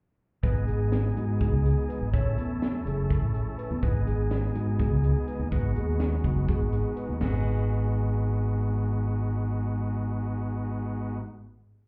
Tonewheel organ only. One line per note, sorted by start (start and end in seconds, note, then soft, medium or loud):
0.43 2.10 G#3 medium
0.43 2.10 B3 medium
0.43 2.10 D#4 medium
0.43 2.10 G#4 medium
2.13 3.79 A3 medium
2.13 3.79 C#4 medium
2.13 3.80 E4 medium
2.13 3.80 A4 medium
3.82 5.48 G#3 medium
3.82 5.48 B3 medium
3.82 5.49 D#4 medium
3.82 5.49 G#4 medium
5.51 7.17 G#3 medium
5.51 7.17 B3 medium
5.51 7.18 D#4 medium
5.51 7.18 F#4 medium
7.21 11.19 G#3 medium
7.21 11.19 B3 medium
7.21 11.18 D#4 medium
7.21 11.19 F#4 medium